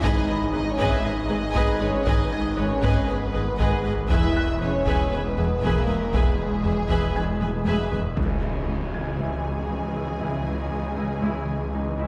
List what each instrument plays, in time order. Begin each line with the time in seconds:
0.02 detuned saw bass G#1, double bass section G#1, cello section G#2, ambient pad D#3 G#3 G#4 B4, french horn section D#4, viola section G#4 B4, violin section D#5 G#5, taiko
0.30 felt piano B5
0.52 double bass section G#1, cello section G#2, french horn section D#4, viola section G#4 B4, violin section D#5 G#5
0.71 french horn section C#4, violin section C#5
0.78 double bass section G#1, cello section G#2, viola section G#4 B4, violin section D#5 G#5, taiko
0.87 french horn section E4, violin section E5
1.03 double bass section G#1, cello section G#2, french horn section D#4, viola section G#4 B4, violin section D#5 G#5
1.28 double bass section G#1, cello section G#2, viola section G#4 B4, violin section D#5 G#5
1.54 double bass section G#1, cello section G#2, viola section G#4 B4, violin section D#5 G#5, felt piano D#6, taiko
1.80 double bass section G#1, cello section G#2, french horn section C#4, viola section G#4 B4, violin section C#5 D#5 G#5
2.05 double bass section G#1, cello section G#2, french horn section D#4, viola section G#4 B4, violin section D#5 G#5, taiko
2.32 felt piano G#5 G#6
2.56 double bass section G#1, cello section G#2, french horn section C#4, viola section G#4 B4, violin section C#5 D#5 G#5
2.82 double bass section G#1, cello section G#2, viola section G#4 B4, violin section D#5 G#5, taiko
3.08 double bass section G#1, cello section G#2, french horn section B3, viola section G#4 B4, violin section B4 D#5 G#5
3.33 double bass section G#1, cello section G#2, viola section G#4 B4, violin section D#5 G#5
3.59 double bass section G#1, cello section G#2, viola section G#4 B4, violin section D#5 G#5, taiko
3.84 double bass section G#1, cello section G#2, viola section G#4 B4, violin section D#5 G#5
4.09 double bass section E1, detuned saw bass E1, cello section E2, ambient pad E3 G#3 G#4, french horn section E4, viola section G#4 B4, violin section E5 G#5, taiko
4.36 felt piano F#6
4.61 double bass section E1, cello section E2, french horn section C#4, viola section G#4 B4, violin section C#5 E5 G#5
4.86 double bass section E1, cello section E2, viola section G#4 B4, violin section E5 G#5, taiko
5.12 double bass section E1, cello section E2, french horn section B3, viola section G#4 B4, violin section B4 E5 G#5
5.37 double bass section E1, cello section E2, viola section G#4 B4, violin section E5 G#5
5.62 double bass section E1, cello section E2, french horn section A#3, viola section G#4 B4, violin section A#4 E5 G#5, taiko
5.87 double bass section E1, cello section E2, viola section G#4 B4, violin section E5 G#5
6.13 double bass section E1, cello section E2, french horn section G#3, viola section G#4 B4, violin section G#4 E5 G#5, taiko
6.39 taiko low
6.63 double bass section E1, cello section E2, viola section G#4 B4, violin section E5 G#5, taiko low
6.89 double bass section E1, cello section E2, viola section G#4 B4, violin section E5 G#5, taiko
7.15 double bass section E1, cello section E2, viola section G#4 B4, violin section E5 G#5, felt piano G#5 G#6
7.40 double bass section E1, cello section E2, viola section G#4 B4, violin section E5 G#5, taiko high
7.65 double bass section E1, cello section E2, viola section G#4 B4, violin section E5 G#5, taiko high
7.91 double bass section E1, cello section E2, viola section G#4 B4, violin section E5 G#5, taiko low
8.16 detuned saw bass C#2, cello section C#2, ambient pad E3 G#3 G#4 D#5, french horn section E3 D#5, viola section E4, violin section G#4 G#5, taiko, impact
8.41 cello section C#2, viola section E4
8.68 cello section C#2, viola section D#4
8.93 cello section C#2, viola section E4, felt piano G#6
9.18 cello section C#2, viola section E4
9.69 cello section C#2, viola section D#4
9.95 cello section C#2, viola section E4
10.21 cello section C#2, viola section E4
10.46 cello section C#2, viola section E4
10.71 cello section C#2, viola section D#4
10.96 cello section C#2, viola section E4
11.22 cello section C#2, viola section E4
11.73 cello section C#2, viola section D#4
11.99 cello section C#2, viola section E4